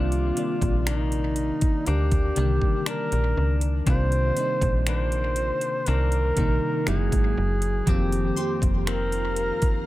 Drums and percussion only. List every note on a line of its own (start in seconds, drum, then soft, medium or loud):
0.12 closed hi-hat soft
0.37 closed hi-hat medium
0.61 kick medium
0.61 closed hi-hat medium
0.87 finger snap loud
0.87 closed hi-hat medium
1.12 closed hi-hat soft
1.36 closed hi-hat medium
1.61 kick loud
1.61 closed hi-hat medium
1.86 closed hi-hat medium
2.12 kick loud
2.12 closed hi-hat soft
2.36 closed hi-hat medium
2.62 kick medium
2.86 finger snap loud
2.86 closed hi-hat medium
3.12 closed hi-hat medium
3.61 closed hi-hat medium
3.87 kick loud
3.87 closed hi-hat medium
4.12 closed hi-hat soft
4.37 closed hi-hat medium
4.61 kick medium
4.61 closed hi-hat medium
4.87 finger snap loud
4.87 closed hi-hat medium
5.12 closed hi-hat soft
5.36 closed hi-hat medium
5.61 closed hi-hat medium
5.86 closed hi-hat medium
6.12 closed hi-hat soft
6.37 kick medium
6.37 closed hi-hat medium
6.87 finger snap loud
6.87 closed hi-hat medium
7.12 kick medium
7.12 closed hi-hat medium
7.62 closed hi-hat medium
7.87 kick loud
7.87 closed hi-hat medium
8.12 closed hi-hat soft
8.37 closed hi-hat medium
8.62 kick medium
8.62 closed hi-hat medium
8.87 finger snap loud
8.87 closed hi-hat medium
9.12 closed hi-hat soft
9.36 closed hi-hat medium
9.62 kick loud
9.62 closed hi-hat medium